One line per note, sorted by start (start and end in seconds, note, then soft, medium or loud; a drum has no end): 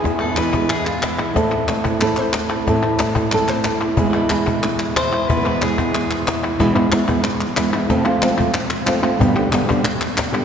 0.00 1.35 E2 medium
0.00 0.37 E3 medium
0.00 0.54 G#4 loud
0.00 muted nylon-string guitar stroke medium
0.05 cajon bass loud
0.05 cajon slap soft
0.19 0.26 B2 soft
0.19 0.26 E3 soft
0.19 0.71 B3 soft
0.19 0.38 A4 medium
0.19 cajon slap soft
0.19 clap soft
0.24 0.31 B2 medium
0.24 0.31 E3 medium
0.24 0.26 G#3 soft
0.24 0.27 B3 soft
0.24 0.27 E4 soft
0.28 0.31 G#3 soft
0.28 0.32 B3 medium
0.28 0.31 E4 medium
0.32 0.36 B2 medium
0.32 0.36 E3 medium
0.32 0.36 G#3 medium
0.32 0.36 B3 medium
0.32 0.36 E4 medium
0.36 0.67 E2 medium
0.36 0.68 B2 medium
0.36 0.68 E3 medium
0.36 1.34 E3 medium
0.36 0.69 G#3 medium
0.36 0.69 B3 medium
0.36 0.69 E4 medium
0.36 0.72 B4 medium
0.36 cajon slap loud
0.36 clap medium
0.53 1.34 G#3 soft
0.53 cajon bass medium
0.53 clap medium
0.68 0.85 E2 medium
0.68 0.85 B2 medium
0.68 0.85 E3 medium
0.68 0.86 G#3 medium
0.68 0.86 B3 medium
0.68 1.02 B3 soft
0.68 0.85 E4 medium
0.68 0.87 G#4 medium
0.68 clap medium
0.86 1.02 E3 soft
0.86 1.02 G#3 soft
0.86 1.02 B3 soft
0.86 1.02 E4 soft
0.86 1.05 F4 medium
0.86 1.18 G#4 soft
0.86 clap medium
1.02 1.35 B3 soft
1.02 1.27 E4 medium
1.02 muted nylon-string guitar stroke medium
1.02 cajon slap loud
1.02 clap medium
1.19 1.34 E3 soft
1.19 1.35 G#3 soft
1.19 1.35 B3 soft
1.19 1.34 E4 soft
1.19 1.33 G#4 soft
1.19 clap medium
1.34 2.65 A2 medium
1.34 1.50 A2 medium
1.34 1.51 E3 medium
1.34 1.68 A3 medium
1.34 1.51 B3 medium
1.34 1.51 C4 medium
1.34 1.86 C4 medium
1.34 2.35 E4 soft
1.34 1.51 E4 medium
1.34 2.01 A4 medium
1.34 cajon bass loud
1.34 cajon slap soft
1.51 1.67 B3 soft
1.51 1.67 C4 soft
1.51 1.67 E4 soft
1.51 cajon slap soft
1.51 clap soft
1.67 2.64 A3 medium
1.67 muted nylon-string guitar stroke soft
1.67 cajon slap medium
1.67 clap medium
1.84 2.00 B3 soft
1.84 2.00 C4 soft
1.84 2.65 C4 soft
1.84 2.00 E4 soft
1.84 cajon bass medium
1.84 clap soft
2.00 2.16 A2 medium
2.00 2.17 E3 medium
2.00 2.17 B3 medium
2.00 2.17 C4 medium
2.00 2.17 E4 medium
2.00 2.18 A4 loud
2.00 clap loud
2.17 2.33 B3 soft
2.17 2.33 C4 soft
2.17 2.33 E4 soft
2.17 2.50 C5 loud
2.17 clap medium
2.33 2.83 E4 soft
2.33 muted nylon-string guitar stroke medium
2.33 cajon slap medium
2.33 clap loud
2.50 2.66 B3 soft
2.50 2.67 C4 soft
2.50 2.66 E4 soft
2.50 2.64 A4 soft
2.50 cajon slap soft
2.50 clap medium
2.67 3.98 A2 medium
2.67 2.83 A2 medium
2.67 2.83 E3 medium
2.67 2.83 B3 medium
2.67 2.83 C4 medium
2.67 2.82 E4 medium
2.67 3.33 A4 medium
2.67 cajon bass loud
2.67 cajon slap soft
2.83 2.99 B3 soft
2.83 2.99 C4 soft
2.83 3.66 E4 soft
2.83 2.99 E4 soft
2.83 cajon slap soft
2.83 clap soft
2.98 3.95 A3 medium
2.98 muted nylon-string guitar stroke medium
2.98 cajon slap loud
2.98 clap medium
3.16 3.32 B3 soft
3.16 3.32 C4 soft
3.16 3.31 E4 soft
3.16 cajon bass medium
3.16 clap soft
3.32 3.48 A2 medium
3.32 3.48 E3 medium
3.32 3.49 B3 medium
3.32 3.48 C4 medium
3.32 3.48 E4 medium
3.32 3.49 A4 loud
3.32 clap medium
3.48 3.65 B3 soft
3.48 3.65 C4 soft
3.48 3.64 E4 medium
3.48 3.81 C5 loud
3.48 clap medium
3.64 3.98 E4 soft
3.64 muted nylon-string guitar stroke medium
3.64 cajon slap medium
3.64 clap medium
3.80 3.97 B3 soft
3.80 3.98 C4 soft
3.80 3.97 E4 soft
3.80 3.96 A4 medium
3.80 cajon slap soft
3.80 clap medium
3.97 5.30 E2 medium
3.97 4.13 E2 medium
3.97 4.04 B2 medium
3.97 4.04 E3 medium
3.97 4.31 G#3 medium
3.97 4.04 G#3 medium
3.97 4.04 B3 medium
3.97 4.65 E4 medium
3.97 4.05 E4 medium
3.97 4.97 G#4 medium
3.97 cajon bass loud
4.05 4.08 B2 soft
4.05 4.08 E3 medium
4.05 4.08 G#3 soft
4.05 4.09 B3 medium
4.05 4.09 E4 medium
4.09 4.13 B2 medium
4.09 4.13 E3 medium
4.09 4.13 G#3 medium
4.09 4.13 B3 medium
4.09 4.14 E4 medium
4.13 4.30 E2 medium
4.13 4.30 B2 medium
4.13 4.30 E3 medium
4.13 4.30 G#3 medium
4.13 4.30 B3 medium
4.13 4.29 E4 medium
4.13 clap soft
4.30 4.63 E3 soft
4.30 5.62 G#3 medium
4.30 4.63 G#3 soft
4.30 4.63 B3 soft
4.30 4.63 E4 soft
4.30 cajon slap loud
4.30 clap medium
4.47 cajon bass medium
4.47 clap medium
4.63 6.27 E4 medium
4.63 muted nylon-string guitar stroke medium
4.63 clap medium
4.79 clap medium
4.96 5.12 E3 soft
4.96 5.12 G#3 medium
4.96 5.11 B3 medium
4.96 5.11 E4 medium
4.96 5.29 C5 loud
4.96 cajon slap loud
4.96 clap loud
5.12 5.28 E3 soft
5.12 5.28 G#3 soft
5.12 5.28 B3 soft
5.12 5.28 E4 soft
5.12 clap soft
5.28 5.44 E2 medium
5.28 6.58 E2 medium
5.28 5.35 B2 medium
5.28 5.35 E3 medium
5.28 5.36 G#3 medium
5.28 5.36 B3 medium
5.28 5.36 E4 medium
5.28 5.63 B4 loud
5.28 cajon bass loud
5.36 5.39 B2 soft
5.36 5.40 E3 soft
5.36 5.40 G#3 medium
5.36 5.40 B3 medium
5.36 5.41 E4 medium
5.41 5.44 B2 medium
5.41 5.44 E3 medium
5.41 5.44 G#3 medium
5.41 5.45 B3 medium
5.41 5.45 E4 medium
5.45 5.61 E2 medium
5.45 5.61 B2 medium
5.45 5.61 E3 medium
5.45 5.61 G#3 medium
5.45 5.61 B3 medium
5.45 5.79 B3 soft
5.45 5.61 E4 medium
5.45 clap soft
5.61 5.94 E3 soft
5.61 6.58 G#3 medium
5.61 5.94 G#3 soft
5.61 5.94 B3 soft
5.61 5.94 E4 soft
5.61 6.27 G#4 medium
5.61 cajon slap medium
5.61 clap medium
5.78 5.94 B3 soft
5.78 cajon bass medium
5.78 clap medium
5.95 6.11 B3 soft
5.95 muted nylon-string guitar stroke medium
5.95 clap medium
6.11 6.59 B3 soft
6.11 clap medium
6.27 6.43 E3 medium
6.27 6.43 G#3 soft
6.27 6.43 B3 medium
6.27 6.43 E4 soft
6.27 6.42 E4 soft
6.27 cajon slap loud
6.27 clap medium
6.43 6.60 E3 soft
6.43 6.60 G#3 soft
6.43 6.59 B3 soft
6.43 6.59 E4 soft
6.43 6.60 E4 soft
6.43 cajon slap soft
6.43 clap soft
6.59 6.75 E2 medium
6.59 6.75 B2 medium
6.59 6.75 E3 medium
6.59 6.75 G#3 medium
6.59 6.75 B3 loud
6.59 6.74 E4 loud
6.59 cajon bass loud
6.59 cajon slap soft
6.75 6.90 E3 medium
6.75 6.91 G#3 medium
6.75 6.91 B3 medium
6.75 6.91 E4 medium
6.75 clap medium
6.92 7.08 E3 medium
6.92 7.08 G#3 medium
6.92 7.07 B3 medium
6.92 7.07 E4 medium
6.92 cajon slap loud
6.92 clap medium
7.08 7.23 E3 medium
7.08 7.23 G#3 medium
7.08 7.23 B3 medium
7.08 7.23 E4 medium
7.08 cajon bass medium
7.08 clap medium
7.24 muted nylon-string guitar stroke medium
7.24 clap medium
7.41 clap medium
7.56 7.73 E3 medium
7.56 7.73 G#3 medium
7.56 7.73 B3 medium
7.56 7.71 E4 medium
7.56 cajon slap loud
7.56 clap loud
7.73 7.88 E3 medium
7.73 7.89 G#3 medium
7.73 7.90 B3 medium
7.73 7.89 E4 medium
7.73 cajon slap soft
7.73 clap medium
7.89 8.05 F2 medium
7.89 8.05 C3 medium
7.89 8.05 F3 medium
7.89 8.06 A3 medium
7.89 8.05 C4 medium
7.89 8.04 F4 loud
7.89 cajon bass loud
7.89 cajon slap soft
8.05 8.21 F3 medium
8.05 8.22 A3 medium
8.05 8.22 C4 medium
8.05 8.22 F4 medium
8.05 cajon slap soft
8.05 clap medium
8.22 8.38 F3 medium
8.22 8.38 A3 medium
8.22 8.37 C4 medium
8.22 8.36 F4 medium
8.22 cajon slap loud
8.22 clap loud
8.38 8.53 F3 medium
8.38 8.53 A3 medium
8.38 8.53 C4 medium
8.38 8.53 F4 medium
8.38 cajon bass medium
8.38 clap medium
8.53 muted nylon-string guitar stroke medium
8.53 clap loud
8.70 clap medium
8.86 9.02 F3 soft
8.86 9.02 A3 medium
8.86 9.01 C4 medium
8.86 9.01 F4 medium
8.86 cajon slap loud
8.86 clap loud
9.02 9.19 F3 soft
9.02 9.19 A3 medium
9.02 9.19 C4 medium
9.02 9.19 F4 medium
9.02 cajon slap soft
9.02 clap medium
9.19 9.35 G2 medium
9.19 9.35 B2 medium
9.19 9.35 D3 loud
9.19 9.36 G3 medium
9.19 9.36 B3 loud
9.19 9.34 G4 loud
9.19 cajon bass loud
9.36 9.50 D3 medium
9.36 9.51 G3 medium
9.36 9.52 B3 medium
9.36 9.52 G4 medium
9.36 cajon slap soft
9.36 clap medium
9.51 9.68 D3 medium
9.51 9.68 G3 medium
9.51 9.67 B3 medium
9.51 9.67 G4 medium
9.51 cajon slap loud
9.51 clap medium
9.68 9.82 D3 medium
9.68 9.83 G3 medium
9.68 9.83 B3 medium
9.68 9.83 G4 medium
9.68 cajon bass medium
9.68 clap medium
9.83 muted nylon-string guitar stroke medium
9.83 clap loud
10.01 clap medium
10.17 cajon slap loud
10.17 clap medium
10.32 10.45 D3 medium
10.32 10.45 G3 medium
10.32 10.45 B3 medium
10.32 10.45 G4 medium
10.32 cajon slap soft
10.32 clap medium